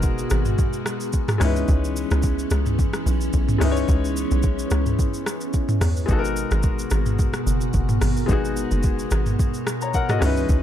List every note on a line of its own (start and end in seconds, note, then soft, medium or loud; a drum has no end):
0.00 0.25 F#1 medium
0.00 1.37 B2 medium
0.00 1.36 G#3 medium
0.00 1.39 G#3 medium
0.00 1.36 B3 medium
0.00 1.37 D#4 medium
0.00 1.37 F#4 medium
0.00 1.38 F#4 medium
0.00 1.43 G#4 medium
0.00 1.42 A#4 medium
0.00 kick loud
0.00 shaker medium
0.18 shaker medium
0.30 0.55 G#1 loud
0.30 cross-stick loud
0.30 shaker medium
0.45 mid tom medium
0.45 shaker medium
0.58 kick loud
0.58 shaker medium
0.73 shaker medium
0.86 cross-stick loud
0.86 shaker loud
1.00 shaker medium
1.13 kick medium
1.13 shaker medium
1.28 cross-stick loud
1.28 mid tom medium
1.28 shaker medium
1.38 1.65 C#2 loud
1.38 6.05 E3 medium
1.38 3.56 G#3 medium
1.38 6.05 B3 medium
1.38 3.57 C#4 medium
1.38 6.05 C#4 medium
1.38 3.57 D#4 medium
1.38 cross-stick loud
1.38 open hi-hat medium
1.38 shaker loud
1.43 3.58 E4 medium
1.43 3.59 B4 medium
1.56 shaker soft
1.68 2.05 C#2 loud
1.68 kick loud
1.68 shaker medium
1.84 shaker medium
1.96 shaker medium
2.11 2.46 C#2 medium
2.11 cross-stick medium
2.11 shaker medium
2.23 kick loud
2.23 shaker medium
2.39 shaker medium
2.51 2.88 C#2 loud
2.51 cross-stick loud
2.51 shaker medium
2.66 mid tom medium
2.66 shaker medium
2.79 kick loud
2.79 shaker medium
2.93 cross-stick medium
2.93 shaker medium
3.06 3.30 B1 medium
3.06 shaker loud
3.21 shaker medium
3.33 3.57 B1 loud
3.33 kick medium
3.33 shaker medium
3.49 mid tom medium
3.49 shaker medium
3.58 3.85 C#2 loud
3.58 5.76 G#3 medium
3.58 5.77 C#4 medium
3.58 5.78 D#4 medium
3.58 cross-stick loud
3.58 open hi-hat medium
3.58 shaker medium
3.63 5.78 E4 medium
3.63 3.70 B4 medium
3.71 5.83 C#5 medium
3.77 shaker soft
3.89 4.25 C#2 loud
3.89 kick loud
3.89 shaker medium
4.05 shaker medium
4.17 shaker medium
4.31 4.66 B1 medium
4.31 shaker medium
4.43 kick loud
4.43 shaker medium
4.59 shaker medium
4.71 4.95 C#2 loud
4.71 cross-stick loud
4.71 shaker loud
4.86 mid tom medium
4.86 shaker medium
4.99 kick loud
4.99 shaker medium
5.14 shaker medium
5.26 cross-stick loud
5.26 shaker loud
5.41 shaker medium
5.53 kick medium
5.53 shaker medium
5.69 mid tom medium
5.69 shaker medium
5.81 6.05 E2 loud
5.81 cross-stick loud
5.81 open hi-hat medium
5.81 shaker loud
5.96 shaker soft
6.06 6.46 G#1 loud
6.06 10.17 B2 medium
6.06 8.24 G#3 medium
6.06 8.24 B3 medium
6.06 8.25 D#4 medium
6.06 10.18 F#4 medium
6.06 10.17 A#4 medium
6.06 kick loud
6.06 shaker medium
6.11 8.26 F#4 medium
6.11 6.18 A4 medium
6.19 8.30 A#4 medium
6.25 shaker medium
6.37 shaker medium
6.51 6.86 G#1 loud
6.51 cross-stick medium
6.51 shaker medium
6.63 kick loud
6.63 shaker medium
6.79 shaker medium
6.91 7.28 G#1 loud
6.91 cross-stick loud
6.91 shaker medium
7.06 mid tom medium
7.06 shaker medium
7.19 kick loud
7.19 shaker medium
7.34 cross-stick medium
7.34 shaker medium
7.46 7.70 F#1 medium
7.46 shaker loud
7.61 shaker medium
7.74 7.98 F#1 loud
7.74 kick medium
7.74 shaker medium
7.89 mid tom loud
7.89 shaker medium
8.01 8.25 G#1 medium
8.01 cross-stick loud
8.01 open hi-hat medium
8.01 shaker loud
8.17 shaker soft
8.26 8.66 G#1 loud
8.26 9.89 G#3 medium
8.26 9.90 B3 medium
8.26 9.91 D#4 medium
8.26 kick loud
8.26 shaker medium
8.31 9.65 F#4 medium
8.31 9.66 G#4 medium
8.45 shaker medium
8.57 shaker medium
8.71 9.06 F#1 medium
8.71 shaker medium
8.83 kick loud
8.83 shaker medium
8.99 shaker medium
9.11 9.35 G#1 loud
9.11 cross-stick loud
9.11 shaker loud
9.26 mid tom medium
9.26 shaker medium
9.39 kick loud
9.39 shaker medium
9.54 shaker medium
9.67 cross-stick loud
9.67 shaker loud
9.81 9.94 C#5 medium
9.81 9.94 A#5 medium
9.81 shaker medium
9.94 10.09 A#4 medium
9.94 10.09 F#5 medium
9.94 kick medium
9.94 shaker medium
10.09 10.36 F#4 medium
10.09 10.36 D#5 medium
10.09 cross-stick loud
10.09 mid tom medium
10.09 shaker medium
10.19 10.45 C#2 loud
10.19 10.63 E3 medium
10.19 10.63 G#3 medium
10.19 10.63 B3 medium
10.19 10.63 C#4 medium
10.19 10.63 D#4 medium
10.19 cross-stick loud
10.19 open hi-hat medium
10.19 shaker loud
10.24 10.63 E4 medium
10.24 10.63 B4 medium
10.37 shaker soft
10.49 10.63 C#2 loud
10.49 kick loud
10.49 shaker medium